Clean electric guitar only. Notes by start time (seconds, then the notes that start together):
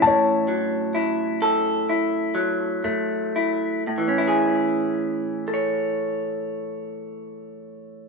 Already playing: E3 C#4 E4
0.03 A2
0.48 F#3
0.95 E4
1.42 A4
1.89 E4
2.35 F#3
2.84 A3
3.36 E4
3.87 A2
3.98 E3
4.08 C#4
4.18 E4
4.28 G#4
5.48 A4
5.54 C#5